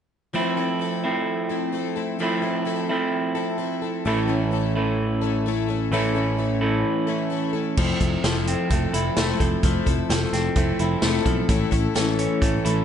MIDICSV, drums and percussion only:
0, 0, Header, 1, 2, 480
1, 0, Start_track
1, 0, Tempo, 464396
1, 361, Time_signature, 4, 2, 24, 8
1, 13278, End_track
2, 0, Start_track
2, 0, Title_t, "Drums"
2, 8035, Note_on_c, 9, 49, 87
2, 8037, Note_on_c, 9, 36, 94
2, 8138, Note_off_c, 9, 49, 0
2, 8140, Note_off_c, 9, 36, 0
2, 8274, Note_on_c, 9, 42, 51
2, 8276, Note_on_c, 9, 36, 67
2, 8377, Note_off_c, 9, 42, 0
2, 8380, Note_off_c, 9, 36, 0
2, 8517, Note_on_c, 9, 38, 93
2, 8517, Note_on_c, 9, 42, 76
2, 8620, Note_off_c, 9, 38, 0
2, 8620, Note_off_c, 9, 42, 0
2, 8758, Note_on_c, 9, 42, 58
2, 8862, Note_off_c, 9, 42, 0
2, 8996, Note_on_c, 9, 42, 75
2, 8999, Note_on_c, 9, 36, 86
2, 9100, Note_off_c, 9, 42, 0
2, 9103, Note_off_c, 9, 36, 0
2, 9239, Note_on_c, 9, 42, 61
2, 9342, Note_off_c, 9, 42, 0
2, 9473, Note_on_c, 9, 38, 95
2, 9473, Note_on_c, 9, 42, 74
2, 9577, Note_off_c, 9, 38, 0
2, 9577, Note_off_c, 9, 42, 0
2, 9718, Note_on_c, 9, 36, 69
2, 9720, Note_on_c, 9, 42, 51
2, 9822, Note_off_c, 9, 36, 0
2, 9824, Note_off_c, 9, 42, 0
2, 9954, Note_on_c, 9, 42, 67
2, 9957, Note_on_c, 9, 36, 99
2, 10057, Note_off_c, 9, 42, 0
2, 10061, Note_off_c, 9, 36, 0
2, 10198, Note_on_c, 9, 36, 70
2, 10198, Note_on_c, 9, 42, 55
2, 10302, Note_off_c, 9, 36, 0
2, 10302, Note_off_c, 9, 42, 0
2, 10441, Note_on_c, 9, 38, 94
2, 10441, Note_on_c, 9, 42, 78
2, 10544, Note_off_c, 9, 38, 0
2, 10544, Note_off_c, 9, 42, 0
2, 10681, Note_on_c, 9, 38, 31
2, 10681, Note_on_c, 9, 42, 57
2, 10784, Note_off_c, 9, 38, 0
2, 10784, Note_off_c, 9, 42, 0
2, 10911, Note_on_c, 9, 42, 70
2, 10916, Note_on_c, 9, 36, 93
2, 11014, Note_off_c, 9, 42, 0
2, 11020, Note_off_c, 9, 36, 0
2, 11154, Note_on_c, 9, 42, 46
2, 11257, Note_off_c, 9, 42, 0
2, 11390, Note_on_c, 9, 38, 100
2, 11390, Note_on_c, 9, 42, 64
2, 11493, Note_off_c, 9, 38, 0
2, 11493, Note_off_c, 9, 42, 0
2, 11635, Note_on_c, 9, 36, 69
2, 11635, Note_on_c, 9, 42, 49
2, 11738, Note_off_c, 9, 36, 0
2, 11739, Note_off_c, 9, 42, 0
2, 11873, Note_on_c, 9, 42, 72
2, 11876, Note_on_c, 9, 36, 100
2, 11976, Note_off_c, 9, 42, 0
2, 11979, Note_off_c, 9, 36, 0
2, 12115, Note_on_c, 9, 36, 74
2, 12115, Note_on_c, 9, 42, 54
2, 12218, Note_off_c, 9, 42, 0
2, 12219, Note_off_c, 9, 36, 0
2, 12357, Note_on_c, 9, 38, 99
2, 12357, Note_on_c, 9, 42, 78
2, 12461, Note_off_c, 9, 38, 0
2, 12461, Note_off_c, 9, 42, 0
2, 12596, Note_on_c, 9, 42, 55
2, 12699, Note_off_c, 9, 42, 0
2, 12836, Note_on_c, 9, 36, 91
2, 12839, Note_on_c, 9, 42, 72
2, 12939, Note_off_c, 9, 36, 0
2, 12943, Note_off_c, 9, 42, 0
2, 13080, Note_on_c, 9, 42, 55
2, 13183, Note_off_c, 9, 42, 0
2, 13278, End_track
0, 0, End_of_file